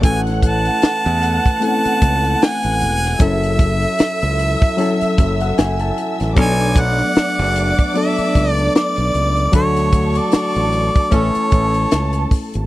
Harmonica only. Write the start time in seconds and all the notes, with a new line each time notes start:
0.05 G#5
0.46 A5
1.64 A5
2.44 G#5
3.23 E5
6.40 G#5
6.80 F#5
7.98 E5
8.52 D5
8.76 D5
9.55 C#5
10.18 D5
10.34 D5
11.14 C#5